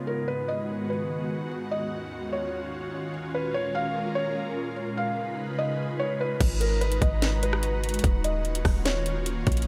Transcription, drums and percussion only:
6.41 kick, closed hi-hat, crash
6.61 closed hi-hat
6.81 closed hi-hat
6.92 closed hi-hat
7.02 kick, closed hi-hat
7.22 snare, closed hi-hat
7.43 closed hi-hat
7.53 cross-stick
7.63 closed hi-hat
7.84 closed hi-hat
7.89 closed hi-hat
7.94 closed hi-hat
7.99 closed hi-hat
8.04 kick, closed hi-hat
8.24 closed hi-hat
8.45 closed hi-hat
8.55 closed hi-hat
8.65 kick, cross-stick, open hi-hat
8.86 snare, closed hi-hat
9.06 closed hi-hat
9.26 closed hi-hat
9.47 kick, closed hi-hat
9.52 closed hi-hat
9.57 closed hi-hat
9.62 closed hi-hat

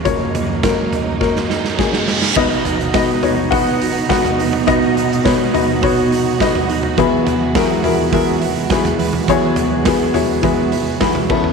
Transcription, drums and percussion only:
0.05 kick, closed hi-hat
0.35 closed hi-hat, floor tom
0.63 kick, snare, closed hi-hat
0.93 closed hi-hat, floor tom
1.21 kick, snare
1.36 snare
1.50 snare
1.65 snare
1.79 kick, snare
1.93 snare
2.08 snare
2.22 snare
2.36 kick, crash
2.51 open hi-hat
2.65 floor tom, hi-hat pedal, open hi-hat
2.80 hi-hat pedal
2.94 kick, snare, hi-hat pedal, open hi-hat
3.23 floor tom, hi-hat pedal, open hi-hat
3.52 kick, hi-hat pedal, open hi-hat
3.81 hi-hat pedal, open hi-hat
3.96 open hi-hat
4.10 kick, snare, hi-hat pedal, open hi-hat
4.25 floor tom, hi-hat pedal
4.39 hi-hat pedal, open hi-hat
4.53 floor tom
4.68 kick, hi-hat pedal, open hi-hat
4.82 open hi-hat
4.97 hi-hat pedal, open hi-hat
5.12 hi-hat pedal
5.25 kick, snare, hi-hat pedal, open hi-hat
5.54 floor tom, hi-hat pedal, open hi-hat
5.83 kick, hi-hat pedal, open hi-hat
6.12 hi-hat pedal, open hi-hat
6.40 kick, snare, hi-hat pedal, open hi-hat
6.55 floor tom
6.69 hi-hat pedal, open hi-hat
6.83 floor tom
6.97 kick, hi-hat pedal, open hi-hat
7.26 floor tom, hi-hat pedal, open hi-hat
7.55 kick, snare, hi-hat pedal, open hi-hat
7.84 floor tom, hi-hat pedal, open hi-hat
8.12 kick, hi-hat pedal, open hi-hat
8.41 hi-hat pedal, open hi-hat
8.56 open hi-hat
8.70 kick, snare, hi-hat pedal, open hi-hat
8.85 floor tom, hi-hat pedal
8.99 hi-hat pedal, open hi-hat
9.13 floor tom
9.28 kick, hi-hat pedal, open hi-hat
9.56 floor tom, hi-hat pedal, open hi-hat
9.85 kick, snare, hi-hat pedal, open hi-hat
10.14 floor tom, hi-hat pedal, open hi-hat
10.43 kick, hi-hat pedal, open hi-hat
10.72 hi-hat pedal, open hi-hat
11.01 kick, snare, hi-hat pedal, open hi-hat
11.15 floor tom
11.29 kick, crash
11.44 floor tom

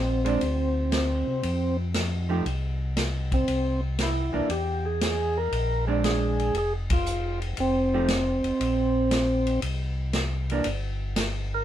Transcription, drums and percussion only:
0.26 ride
0.41 ride
0.92 snare, hi-hat pedal, ride
1.43 ride
1.94 snare, hi-hat pedal, ride
2.46 ride
2.97 snare, hi-hat pedal, ride
3.32 kick, ride
3.48 ride
3.99 snare, hi-hat pedal, ride
4.50 ride
5.01 snare, hi-hat pedal, ride
5.52 ride
6.04 snare, hi-hat pedal, ride
6.40 ride
6.55 ride
6.90 kick, ride
7.06 hi-hat pedal
7.42 ride
7.57 ride
8.08 snare, hi-hat pedal, ride
8.44 ride
8.61 ride
9.11 snare, hi-hat pedal, ride
9.47 ride
9.62 ride
10.13 snare, hi-hat pedal, ride
10.50 ride
10.64 ride
11.16 snare, hi-hat pedal, ride

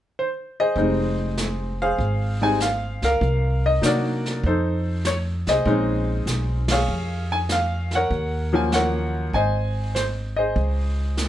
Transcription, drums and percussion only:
0.76 brush sweep, kick
1.37 snare, hi-hat pedal
1.99 brush sweep, kick
2.60 snare, hi-hat pedal
3.02 snare
3.21 brush sweep, kick
3.83 snare, hi-hat pedal
4.26 snare
4.43 brush sweep, kick
5.05 snare, hi-hat pedal
5.47 snare
5.66 brush sweep, kick
6.27 snare, hi-hat pedal
6.68 snare, ride
6.88 brush sweep
7.49 snare, hi-hat pedal
7.91 snare
8.11 brush sweep, kick
8.72 snare, hi-hat pedal
9.33 brush sweep, kick
9.96 snare, hi-hat pedal
10.56 brush sweep, kick
11.17 snare, hi-hat pedal

